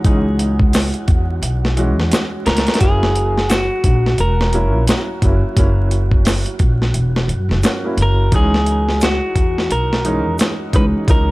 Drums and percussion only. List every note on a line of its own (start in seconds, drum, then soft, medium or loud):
0.04 kick loud
0.04 closed hi-hat medium
0.39 closed hi-hat medium
0.60 kick medium
0.73 snare loud
0.73 open hi-hat medium
0.73 shaker medium
0.94 closed hi-hat soft
1.08 kick medium
1.08 closed hi-hat medium
1.43 closed hi-hat medium
1.65 snare soft
1.77 closed hi-hat medium
2.00 snare soft
2.12 snare loud
2.12 closed hi-hat medium
2.12 shaker medium
2.46 snare medium
2.46 closed hi-hat medium
2.57 snare medium
2.57 closed hi-hat medium
2.67 snare medium
2.67 closed hi-hat medium
2.74 snare medium
2.74 closed hi-hat medium
2.80 kick loud
2.80 closed hi-hat medium
3.03 snare medium
3.15 closed hi-hat medium
3.38 snare soft
3.50 snare loud
3.50 closed hi-hat medium
3.50 shaker medium
3.84 kick medium
3.84 closed hi-hat medium
4.06 snare soft
4.18 closed hi-hat medium
4.41 snare medium
4.53 closed hi-hat medium
4.87 snare loud
4.87 closed hi-hat medium
4.87 shaker medium
5.22 kick medium
5.22 closed hi-hat medium
5.57 kick loud
5.57 closed hi-hat medium
5.91 closed hi-hat medium
6.12 kick medium
6.25 snare loud
6.25 open hi-hat medium
6.25 shaker medium
6.46 closed hi-hat soft
6.59 kick medium
6.59 closed hi-hat medium
6.82 snare soft
6.94 closed hi-hat medium
7.16 snare medium
7.29 closed hi-hat medium
7.51 snare soft
7.63 snare loud
7.63 closed hi-hat medium
7.63 shaker medium
7.98 closed hi-hat medium
8.32 kick loud
8.32 closed hi-hat medium
8.54 snare soft
8.66 closed hi-hat medium
8.89 snare soft
9.01 snare loud
9.01 closed hi-hat medium
9.01 shaker medium
9.36 kick medium
9.36 closed hi-hat medium
9.58 snare soft
9.71 closed hi-hat medium
9.93 snare medium
10.05 closed hi-hat medium
10.39 snare loud
10.39 closed hi-hat medium
10.39 shaker medium
10.73 kick medium
10.73 closed hi-hat medium
11.08 kick loud
11.08 closed hi-hat medium